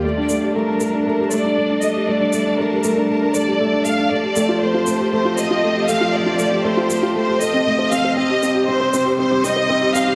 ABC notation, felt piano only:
X:1
M:4/4
L:1/16
Q:1/4=118
K:Gm
V:1 name="Felt piano"
A, D A, G A, D A, D A, G A, D A, D A, G | A, D A, D A, G A, D A, D A, G A, D A, D | A, G A, F A, F A, G A, F A, F A, G A, F | A, F A, G A, F A, F A, G A C A, c C c |
C G C G C c C G C G C c C G C G |]